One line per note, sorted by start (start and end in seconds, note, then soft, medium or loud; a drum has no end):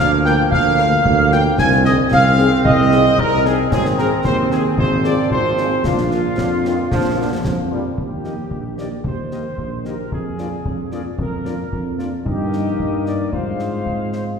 0.00 0.43 D2 medium
0.00 1.55 F3 medium
0.00 1.55 A#3 medium
0.00 0.11 F5 loud
0.25 0.35 A#3 medium
0.25 0.35 F4 medium
0.25 0.35 A#4 medium
0.25 0.50 G5 loud
0.25 0.37 G5 loud
0.25 0.51 G6 medium
0.25 snare medium
0.51 0.97 D2 medium
0.51 1.28 F5 loud
0.51 1.29 F5 loud
0.51 1.28 F6 loud
0.51 concert bass drum loud
0.78 0.88 A#3 medium
0.78 0.88 F4 medium
0.78 0.89 A#4 medium
0.78 snare medium
1.05 1.50 D2 loud
1.05 concert bass drum medium
1.31 1.42 A#3 medium
1.31 1.41 F4 medium
1.31 1.41 A#4 medium
1.31 1.44 G5 loud
1.31 1.57 G5 loud
1.31 1.38 G6 loud
1.31 snare medium
1.58 2.03 C2 loud
1.58 3.67 D#3 medium
1.58 3.70 C4 loud
1.58 1.71 G#5 loud
1.58 1.84 G#6 loud
1.58 concert bass drum loud
1.58 snare medium
1.72 snare medium
1.84 1.94 C4 medium
1.84 1.94 D#4 medium
1.84 1.94 G#4 medium
1.84 1.97 D#5 loud
1.84 1.98 D#5 loud
1.84 2.11 D#6 medium
1.84 snare medium
2.12 2.56 C2 loud
2.12 2.62 F5 loud
2.12 2.62 F6 loud
2.12 concert bass drum medium
2.12 snare medium
2.37 2.48 C4 medium
2.37 2.48 D#4 medium
2.37 2.47 G#4 medium
2.37 snare medium
2.65 3.10 C2 loud
2.65 3.14 D#5 loud
2.65 3.19 D#5 loud
2.65 3.21 D#6 loud
2.65 concert bass drum loud
2.91 3.01 C4 medium
2.91 3.02 D#4 medium
2.91 3.01 G#4 medium
2.91 snare medium
3.18 3.63 C2 medium
3.18 3.43 A#4 loud
3.18 3.46 A#4 loud
3.18 3.48 A#5 loud
3.18 concert bass drum medium
3.45 3.55 C4 medium
3.45 3.55 D#4 medium
3.45 3.71 G#4 loud
3.45 3.72 G#4 medium
3.45 3.55 G#4 medium
3.45 3.72 G#5 medium
3.45 snare medium
3.72 4.11 G#1 medium
3.72 4.75 D#3 medium
3.72 5.81 C4 medium
3.72 3.84 G#4 loud
3.72 3.97 G#4 loud
3.72 3.78 G#5 loud
3.72 concert bass drum medium
3.72 snare medium
3.72 crash soft
3.85 snare medium
3.98 4.08 C4 medium
3.98 4.08 D#4 medium
3.98 4.08 G#4 medium
3.98 4.10 A#4 loud
3.98 4.24 A#4 medium
3.98 4.27 A#5 medium
3.98 snare medium
4.24 4.69 D#2 medium
4.24 4.37 C5 loud
4.24 4.50 C5 medium
4.24 4.53 C6 loud
4.24 concert bass drum medium
4.24 snare medium
4.51 4.61 C4 medium
4.51 4.61 D#4 medium
4.51 4.61 G#4 medium
4.51 4.78 G#4 medium
4.51 4.64 G#4 loud
4.51 4.78 G#5 medium
4.51 snare medium
4.78 5.22 G#1 medium
4.78 5.83 F3 medium
4.78 5.03 C5 loud
4.78 5.04 C5 loud
4.78 5.03 C6 medium
4.78 concert bass drum loud
5.04 5.14 C4 medium
5.04 5.15 F4 medium
5.04 5.14 G#4 medium
5.04 5.30 D5 medium
5.04 5.30 D5 loud
5.04 5.11 D6 medium
5.04 snare medium
5.31 5.76 G#1 medium
5.31 5.81 C5 medium
5.31 5.81 C5 loud
5.31 5.81 C6 medium
5.31 concert bass drum medium
5.57 5.69 C4 medium
5.57 5.68 F4 medium
5.57 5.68 G#4 medium
5.57 snare medium
5.84 6.29 A#1 medium
5.84 6.29 F3 medium
5.84 6.29 D4 medium
5.84 7.40 F4 medium
5.84 7.41 F4 medium
5.84 7.41 F5 medium
5.84 concert bass drum medium
5.84 snare medium
5.98 snare medium
6.11 6.21 A#3 medium
6.11 6.21 D4 medium
6.11 6.21 F4 medium
6.11 snare medium
6.38 6.83 F2 medium
6.38 6.50 D3 medium
6.38 concert bass drum medium
6.38 snare medium
6.64 6.78 D#3 medium
6.64 6.74 A#3 medium
6.64 6.74 D4 medium
6.64 6.74 F4 medium
6.64 snare medium
6.91 7.36 A#1 medium
6.91 7.16 F3 medium
6.91 concert bass drum loud
6.91 snare medium
7.17 7.31 D3 medium
7.17 7.27 A#3 medium
7.17 7.27 D4 medium
7.17 7.27 F4 medium
7.45 7.89 F2 medium
7.45 7.57 F3 medium
7.45 concert bass drum medium
7.45 snare medium
7.71 7.84 G3 medium
7.71 7.81 A#3 medium
7.71 7.81 D4 medium
7.71 7.81 F4 medium
7.98 8.43 D#2 soft
7.98 8.74 G4 medium
7.98 concert bass drum medium
8.24 8.34 A#3 soft
8.24 8.34 D#4 soft
8.24 8.35 G4 soft
8.24 8.34 A#4 soft
8.24 8.34 D#5 soft
8.24 snare soft
8.51 8.96 A#1 soft
8.51 concert bass drum medium
8.78 8.88 A#3 soft
8.78 8.88 D#4 soft
8.78 8.88 G4 soft
8.78 8.88 A#4 soft
8.78 8.90 D5 medium
8.78 8.88 D#5 soft
8.78 snare soft
9.04 9.49 D#2 soft
9.04 9.81 C5 medium
9.04 concert bass drum medium
9.31 9.41 A#3 soft
9.31 9.41 D#4 soft
9.31 9.41 G4 soft
9.31 9.42 A#4 soft
9.31 9.42 D#5 soft
9.31 snare soft
9.58 10.03 A#1 medium
9.58 concert bass drum medium
9.85 9.95 A#3 soft
9.85 9.94 D#4 soft
9.85 9.95 G4 soft
9.85 10.12 A#4 medium
9.85 9.95 A#4 soft
9.85 9.95 D#5 soft
9.85 snare soft
10.12 10.56 F2 medium
10.12 10.89 G#4 medium
10.12 concert bass drum medium
10.38 10.48 A#3 soft
10.38 10.48 D4 soft
10.38 10.48 F4 soft
10.38 10.49 A#4 soft
10.38 10.49 D5 soft
10.38 snare soft
10.65 11.06 F2 medium
10.65 concert bass drum medium
10.91 11.01 A#3 soft
10.91 11.01 D4 soft
10.91 11.01 F4 soft
10.91 11.05 G#4 medium
10.91 11.02 A#4 medium
10.91 11.02 D5 soft
10.91 snare soft
11.18 11.64 F2 medium
11.18 11.96 A#4 medium
11.18 concert bass drum medium
11.45 11.55 A#3 soft
11.45 11.55 D4 medium
11.45 11.55 F4 soft
11.45 11.55 A#4 medium
11.45 11.55 D5 medium
11.45 snare soft
11.72 12.17 F2 medium
11.72 concert bass drum medium
11.98 12.08 A#3 medium
11.98 12.08 D4 medium
11.98 12.08 F4 medium
11.98 12.08 A#4 soft
11.98 12.08 D5 soft
11.98 snare soft
12.24 12.73 G2 medium
12.24 13.28 A#3 medium
12.24 13.28 D#4 medium
12.24 13.02 G4 medium
12.24 13.28 A#4 medium
12.24 13.28 D#5 medium
12.24 concert bass drum medium
12.53 snare soft
12.79 13.26 G2 medium
12.79 concert bass drum medium
13.06 13.33 D5 medium
13.06 snare soft
13.32 13.80 G#2 medium
13.32 14.39 G#3 soft
13.32 14.39 C4 soft
13.32 14.39 F4 soft
13.32 14.39 G#4 medium
13.32 14.11 C5 medium
13.32 14.39 F5 medium
13.32 concert bass drum medium
13.59 snare soft
13.86 14.33 G#2 soft
13.86 concert bass drum medium
14.12 14.24 C5 medium
14.12 snare soft